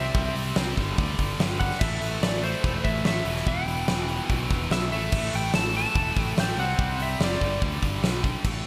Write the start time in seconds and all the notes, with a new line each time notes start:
Already playing: C3 G3 C4 E5
0.14 C2 C3 G3 C4, kick, open hi-hat
0.35 C2, open hi-hat
0.56 C2 C3 G3 C4, snare, open hi-hat
0.77 G1 G2 D3 G3, kick, open hi-hat
0.98 D2 G2 D3 G3, kick, open hi-hat
1.18 G1, kick, open hi-hat
1.38 G1 G2 D3 G3, snare, open hi-hat
1.60 G2 D3 G3 F#5, kick, open hi-hat
1.71 snare
1.79 A1 A2 E3 A3 E5, kick, crash
2.01 A1, open hi-hat
2.21 A1 A2 E3 A3 D5, snare, open hi-hat
2.41 A2 E3 A3 C5, open hi-hat
2.63 E1 A2 E3 A3, kick, open hi-hat
2.84 A1 E5, kick, open hi-hat
3.03 A1 A2 E3 A3 E5, snare, open hi-hat
3.25 E1 E2 B2 E3, open hi-hat
3.36 snare
3.46 E1 E2 B2 E3 G5, kick, open hi-hat
3.66 E1, open hi-hat
3.88 E1 E2 B2 E3, snare, open hi-hat
4.07 E2 B2 E3, open hi-hat
4.29 B1 E2 B2 E3, kick, open hi-hat
4.50 E1, kick, open hi-hat
4.70 B1 E2 B2 E3 E5, snare, open hi-hat
4.90 A1 A2 E3 A3 E5, open hi-hat
5.11 A1 A2 E3 A3, kick, crash
5.33 A1 G5, open hi-hat
5.52 A1 A2 E3 A3 A5, snare, open hi-hat
5.73 A2 E3 A3 A5, open hi-hat
5.93 E1 A2 E3 A3, kick, open hi-hat
6.16 A1, kick, open hi-hat
6.21 G5
6.37 A1 A2 E3 A3 G5, snare, open hi-hat
6.57 C2 C3 G3 C4 F#5, open hi-hat
6.78 C2 C3 G3 C4, kick, open hi-hat
6.99 C2 E5, open hi-hat
7.20 F#1 C3 G3 C4 D5, snare, open hi-hat
7.40 G1 G2 D3 G3, kick, open hi-hat
7.60 D2 G2 D3 G3, kick, open hi-hat
7.82 G1, kick, open hi-hat
8.03 B1 G2 D3 G3, snare, open hi-hat
8.23 G2 D3 G3, kick, open hi-hat
8.44 A1 A2 E3 A3, kick, crash